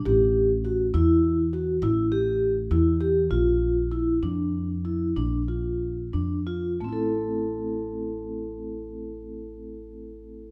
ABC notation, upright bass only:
X:1
M:11/8
L:1/8
Q:1/4=95
K:Am
V:1 name="Upright bass" clef=bass
A,,,3 E,,3 A,,,3 E,,2 | _B,,,3 F,,3 B,,,3 F,,2 | A,,,8- A,,,3 |]